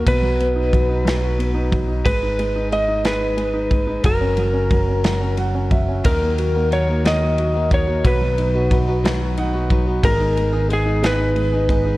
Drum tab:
RD |xxxxxx|xxxxxx|xxxxxx|xxxxxx|
SD |---o--|---o--|---o--|---o--|
BD |o-o--o|o----o|o-o--o|o----o|

RD |xxxxxx|xxxxxx|
SD |---o--|---o--|
BD |o-o--o|o----o|